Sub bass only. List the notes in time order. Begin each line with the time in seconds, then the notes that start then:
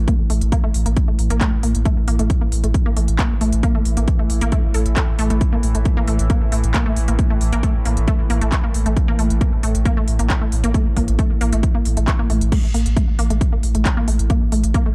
0.30 A1
0.41 A1
0.74 A1
0.86 A1
1.19 A1
1.30 A1
1.63 A1
1.75 A1
2.08 A1
2.19 A1
2.52 A1
2.64 A1
2.97 A1
3.08 A1
3.41 A1
3.52 A1
3.85 A1
3.97 A1
4.30 A1
4.41 A1
4.74 A1
4.86 A1
5.19 A1
5.30 A1
5.63 A1
5.75 A1
6.08 A1
6.19 A1
6.52 A1
6.64 A1
6.97 A1
7.08 A1
7.41 A1
7.53 A1
7.86 A1
7.97 A1
8.30 A1
8.42 A1
8.74 A1
8.86 A1
9.19 A1
9.30 A1
9.63 A1
9.75 A1
10.08 A1
10.19 A1
10.52 A1
10.64 A1
10.97 A1
11.08 A1
11.41 A1
11.53 A1
11.86 A1
11.97 A1
12.30 A1
12.41 A1
12.74 A1
12.86 A1
13.19 A1
13.30 A1
13.63 A1
13.75 A1
14.08 A1
14.19 A1
14.52 A1
14.64 A1